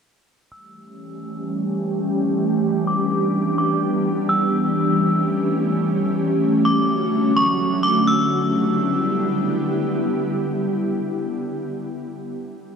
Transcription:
0.51 4.25 E3 medium
0.51 2.38 G3 medium
0.51 2.38 A3 medium
0.51 2.38 C#4 medium
0.51 6.14 G4 medium
0.51 1.42 E6 medium
2.40 6.14 G3 medium
2.40 4.27 B3 medium
2.40 4.27 D4 medium
2.87 3.54 D6 medium
3.58 3.81 D6 medium
4.29 6.16 E3 medium
4.29 6.16 A3 medium
4.29 6.16 C#4 medium
4.29 5.20 E6 medium
6.18 8.05 D3 medium
6.18 8.05 F#3 medium
6.18 8.05 A3 medium
6.18 8.05 C#4 medium
6.18 8.05 F#4 medium
6.65 7.32 D6 medium
7.37 7.81 C#6 medium
7.83 8.06 D6 medium
8.07 11.26 D3 medium
8.07 11.27 G3 medium
8.07 11.26 B3 medium
8.07 11.26 E4 medium
8.07 11.27 G4 medium
8.07 9.45 E6 medium

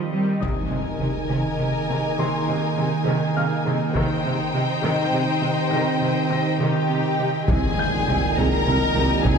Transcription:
0.00 0.40 D#3 medium
0.00 0.12 F3 soft
0.00 0.12 G3 soft
0.00 0.11 C4 medium
0.00 0.43 C4 medium
0.00 0.43 G4 medium
0.00 0.39 D#5 medium
0.00 0.39 C6 soft
0.12 0.41 D#3 soft
0.12 0.41 G3 soft
0.12 0.43 C4 soft
0.41 0.49 C3 soft
0.41 3.91 D#3 soft
0.41 0.70 D#3 soft
0.41 3.91 A#3 soft
0.41 3.91 D#4 soft
0.41 3.91 G#4 soft
0.41 3.92 A#4 soft
0.41 3.91 D#5 soft
0.41 3.92 G#5 soft
0.41 2.14 D#6 soft
0.41 taiko soft
0.41 impact soft
0.70 0.78 C3 soft
0.70 0.80 D#3 soft
1.00 1.08 C3 soft
1.00 1.08 D#3 soft
1.29 1.37 C3 soft
1.29 1.58 D#3 soft
1.59 1.67 C3 soft
1.59 1.68 D#3 soft
1.89 1.97 C3 soft
1.89 1.98 D#3 soft
2.18 2.26 C3 soft
2.18 2.46 D#3 soft
2.18 3.92 C6 soft
2.48 2.56 C3 soft
2.48 2.57 D#3 soft
2.77 2.85 C3 soft
2.77 2.86 D#3 soft
3.06 3.14 C3 soft
3.06 3.35 D#3 medium
3.36 3.44 C3 soft
3.36 3.44 D#3 soft
3.36 5.09 F5 soft
3.36 5.09 F6 soft
3.65 3.74 C3 soft
3.65 3.73 D#3 soft
3.94 4.03 C3 medium
3.94 4.22 D#3 medium
3.94 7.44 D#3 medium
3.94 7.48 C4 medium
3.94 7.24 D#4 medium
3.94 7.48 G4 medium
3.94 6.56 C5 medium
3.94 7.44 D#5 medium
3.94 6.56 G5 medium
3.94 taiko soft
4.24 4.32 C3 soft
4.24 4.33 C3 soft
4.54 4.62 C3 soft
4.83 4.92 C3 medium
4.83 5.11 D#3 medium
5.13 5.21 C3 soft
5.42 5.50 C3 soft
5.42 5.51 C3 soft
5.71 5.79 C3 soft
5.71 5.99 D#3 soft
5.71 6.29 A#6 soft
6.01 6.09 C3 soft
6.01 6.10 C3 soft
6.30 6.39 C3 soft
6.30 7.44 A#6 soft
6.60 6.68 C3 soft
6.60 6.88 D#3 soft
6.60 7.44 G4 soft
6.60 7.45 G5 medium
6.90 6.98 C3 soft
7.19 7.27 C3 soft
7.19 7.28 C3 soft
7.48 7.60 C2 medium
7.48 7.57 C2 medium
7.48 9.38 A#2 medium
7.48 7.57 C3 medium
7.48 9.38 D#3 medium
7.48 9.38 G#3 soft
7.48 9.38 A#3 medium
7.48 9.38 D#4 medium
7.48 8.36 G#4 medium
7.48 9.38 D#5 medium
7.48 8.37 G#5 medium
7.48 taiko medium
7.48 impact medium
7.79 9.38 G6 medium
8.07 8.15 C2 soft
8.07 8.19 C2 soft
8.07 8.16 C3 soft
8.36 8.48 C2 medium
8.36 8.45 C2 medium
8.36 8.45 C3 medium
8.36 8.64 G#4 soft
8.36 9.24 A#4 medium
8.36 9.26 A#5 medium
8.66 8.78 C2 soft
8.66 8.75 C2 soft
8.66 8.75 C3 soft
8.66 8.96 A#4 medium
8.95 9.07 C2 soft
8.95 9.04 C2 soft
8.95 9.04 C3 soft
8.95 9.25 G4 soft
9.25 9.33 C2 medium
9.25 9.37 C2 medium
9.25 9.33 C3 medium
9.25 9.38 G#4 medium
9.25 9.38 G#5 medium
9.25 taiko medium

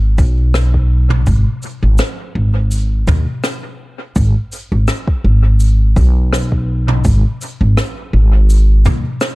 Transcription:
0.00 0.15 G#1 medium
0.18 1.24 B1 medium
0.18 kick loud
0.18 cabasa soft
0.54 cross-stick medium
0.54 cabasa medium
0.74 kick medium
1.10 mid tom medium
1.26 1.44 G#1 medium
1.26 kick loud
1.26 cabasa medium
1.62 cabasa soft
1.83 1.97 G#1 medium
1.98 cross-stick medium
1.98 cabasa medium
2.35 3.04 G#1 medium
2.71 cabasa medium
3.08 3.25 D#2 medium
3.08 kick loud
3.08 mid tom medium
3.08 cabasa soft
3.44 cross-stick medium
3.44 cabasa medium
4.16 4.33 G#1 medium
4.16 kick loud
4.16 cabasa medium
4.52 cabasa soft
4.72 4.86 G#1 medium
4.88 cross-stick medium
4.88 cabasa medium
5.08 kick loud
5.24 5.93 G#1 medium
5.60 cabasa medium
5.96 7.02 B1 medium
5.96 kick loud
5.96 cabasa soft
6.33 cross-stick medium
6.33 cabasa medium
6.52 kick medium
6.88 mid tom medium
7.04 7.22 G#1 medium
7.04 kick loud
7.04 cabasa medium
7.41 cabasa soft
7.61 7.75 G#1 medium
7.77 cross-stick medium
7.77 cabasa medium
8.13 8.82 G#1 medium
8.50 cabasa medium
8.85 9.03 D#2 medium
8.85 kick loud
8.85 mid tom medium
8.85 cabasa soft
9.21 cross-stick medium
9.21 cabasa medium

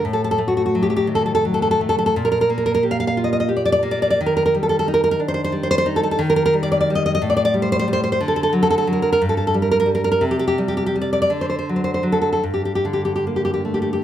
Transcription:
0.05 2.10 A2 medium
0.13 0.21 A4 medium
0.24 0.30 A4 medium
0.31 0.39 A4 medium
0.38 1.43 A3 medium
0.48 0.56 F#4 medium
0.57 0.64 F#4 medium
0.66 0.74 F#4 medium
0.75 1.44 F#3 medium
0.83 0.89 G4 medium
0.90 0.95 G4 medium
0.96 1.06 G4 medium
1.07 2.13 D#3 medium
1.15 1.25 A4 medium
1.26 1.34 A4 medium
1.35 1.43 A4 medium
1.45 2.14 F#3 medium
1.54 1.61 A4 medium
1.62 1.70 A4 medium
1.71 1.79 A4 medium
1.81 2.14 A3 medium
1.89 1.97 A4 loud
1.99 2.05 A4 medium
2.06 2.14 A4 medium
2.16 4.16 A#2 medium
2.25 2.30 A#4 medium
2.32 2.40 A#4 medium
2.41 2.49 A#4 medium
2.50 3.50 A#3 medium
2.58 2.65 A#4 medium
2.66 2.73 A#4 medium
2.75 2.82 A#4 medium
2.83 3.47 G4 medium
2.91 2.99 F5 medium
3.00 3.06 F5 medium
3.07 3.16 F5 loud
3.17 4.19 F4 medium
3.24 3.31 D#5 medium
3.33 3.39 D#5 medium
3.40 3.49 D#5 medium
3.49 4.18 G4 medium
3.57 3.64 D5 medium
3.65 3.71 D5 loud
3.72 3.82 D5 loud
3.83 4.18 A#3 medium
3.91 4.00 D5 loud
4.02 4.09 D5 loud
4.10 4.19 D5 loud
4.21 6.17 D#3 medium
4.26 4.35 A#4 medium
4.37 4.44 A#4 medium
4.46 4.53 A#4 medium
4.55 5.19 G3 medium
4.63 4.68 A4 medium
4.69 4.78 A4 medium
4.79 4.87 A4 medium
4.88 5.85 D#4 medium
4.94 5.03 A#4 medium
5.04 5.10 A#4 medium
5.11 5.20 A#4 loud
5.20 6.20 D4 medium
5.28 5.33 C5 medium
5.34 5.43 C5 medium
5.44 5.53 C5 loud
5.52 6.19 G3 medium
5.63 5.70 C5 medium
5.71 5.77 C5 loud
5.78 5.87 C5 loud
5.86 6.19 D#4 medium
5.96 6.02 A4 medium
6.03 6.10 A4 medium
6.11 6.20 A4 medium
6.19 7.17 D#3 medium
6.30 6.35 A#4 loud
6.36 6.44 A#4 loud
6.46 6.54 A#4 loud
6.54 6.89 G3 medium
6.63 6.71 D5 loud
6.72 6.79 D5 loud
6.81 6.88 D5 loud
6.90 7.19 G3 medium
6.95 7.04 D#5 medium
7.06 7.13 D#5 loud
7.15 7.22 D#5 loud
7.22 8.18 A2 medium
7.30 7.35 D5 medium
7.37 7.44 D5 loud
7.45 7.53 D5 loud
7.54 7.87 G3 medium
7.62 7.70 C5 medium
7.72 7.78 C5 loud
7.79 7.87 C5 loud
7.88 8.17 G3 medium
7.93 8.02 C5 loud
8.04 8.11 C5 medium
8.12 8.20 C5 loud
8.21 9.17 D3 medium
8.28 8.35 A4 loud
8.36 8.42 A4 loud
8.43 8.52 A4 loud
8.53 8.86 F#3 medium
8.63 8.69 A4 loud
8.70 8.77 A4 loud
8.78 8.86 A4 loud
8.87 9.17 F#3 medium
8.93 9.01 A#4 medium
9.02 9.11 A#4 medium
9.12 9.21 A#4 loud
9.22 10.21 G2 medium
9.29 9.36 A4 medium
9.37 9.46 A4 medium
9.47 9.55 A4 medium
9.54 9.85 G3 medium
9.62 9.70 A#4 medium
9.71 9.79 A#4 loud
9.80 9.88 A#4 loud
9.86 10.18 G3 medium
9.95 10.03 A#4 loud
10.04 10.10 A#4 medium
10.12 10.22 A#4 medium
10.21 11.27 C3 medium
10.31 10.38 G4 medium
10.39 10.46 G4 medium
10.48 10.57 G4 medium
10.58 10.94 G3 medium
10.68 10.76 G4 medium
10.77 10.85 G4 medium
10.86 10.95 G4 medium
10.96 11.28 G3 medium
11.02 11.12 D5 medium
11.13 11.21 D5 medium
11.22 11.31 D5 medium
11.30 12.40 D3 medium
11.41 11.48 C5 medium
11.50 11.57 C5 medium
11.59 11.68 C5 medium
11.69 12.02 F#3 soft
11.76 11.83 C5 medium
11.84 11.93 C5 medium
11.94 12.04 C5 medium
12.03 12.39 F#3 medium
12.12 12.20 A4 medium
12.22 12.31 A4 medium
12.33 12.43 A4 medium
12.43 14.04 G2 medium
12.54 12.63 G4 medium
12.65 12.74 G4 medium
12.75 12.84 G4 medium
12.85 14.00 D3 medium
12.93 13.03 G4 medium
13.05 13.14 G4 medium
13.16 13.24 G4 medium
13.27 14.01 A#3 medium
13.36 13.44 G4 medium
13.45 13.52 G4 medium
13.54 13.62 G4 medium
13.65 14.04 A3 soft
13.74 13.81 G4 medium
13.82 13.91 G4 medium
13.93 14.01 G4 medium

